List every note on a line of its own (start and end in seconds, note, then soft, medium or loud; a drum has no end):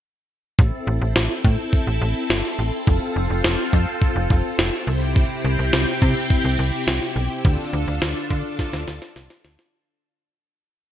0.59 0.71 A1 loud
0.59 4.84 C4 medium
0.59 2.85 E4 medium
0.59 4.84 A4 medium
0.59 kick loud
0.87 1.00 A1 loud
1.01 1.14 A1 loud
1.16 1.28 A1 loud
1.16 snare loud
1.45 1.57 A2 loud
1.45 kick medium
1.73 kick medium
1.87 2.00 A1 medium
2.01 2.14 A1 loud
2.30 2.43 G1 medium
2.30 snare loud
2.59 2.71 A1 medium
2.87 3.00 F1 loud
2.87 4.85 F4 medium
2.87 kick loud
3.16 3.29 F1 loud
3.30 3.43 F1 medium
3.44 3.57 F1 loud
3.44 snare loud
3.73 3.86 F2 loud
3.73 kick medium
4.02 kick medium
4.16 4.28 F1 loud
4.30 4.43 F1 loud
4.30 kick loud
4.59 4.71 F1 medium
4.59 snare loud
4.87 5.25 C2 loud
4.87 7.42 C3 medium
4.87 7.42 C4 medium
4.87 7.42 E4 medium
4.87 7.42 G4 medium
4.87 7.42 G5 medium
5.16 kick loud
5.45 5.57 C2 loud
5.59 5.71 C2 medium
5.73 5.86 C2 loud
5.73 snare loud
6.02 6.14 C3 loud
6.02 kick medium
6.30 kick medium
6.45 6.57 C2 medium
6.59 6.71 C2 loud
6.87 7.00 C2 medium
6.87 snare loud
7.16 7.28 B1 medium
7.45 7.57 D2 loud
7.45 9.71 D3 medium
7.45 9.71 D4 medium
7.45 9.71 F4 medium
7.45 9.71 A4 medium
7.45 9.71 A5 medium
7.45 kick loud
7.73 7.86 D2 loud
7.88 8.00 D2 medium
8.02 8.14 D2 loud
8.02 snare loud
8.31 8.43 D3 loud
8.31 kick medium
8.59 kick medium
8.59 snare medium
8.73 8.86 D2 loud
8.73 snare medium
8.88 9.00 D2 loud
8.88 snare medium
9.02 snare medium
9.16 9.29 C2 medium
9.16 snare medium
9.30 snare medium
9.45 9.57 D2 medium
9.45 snare medium
9.59 snare medium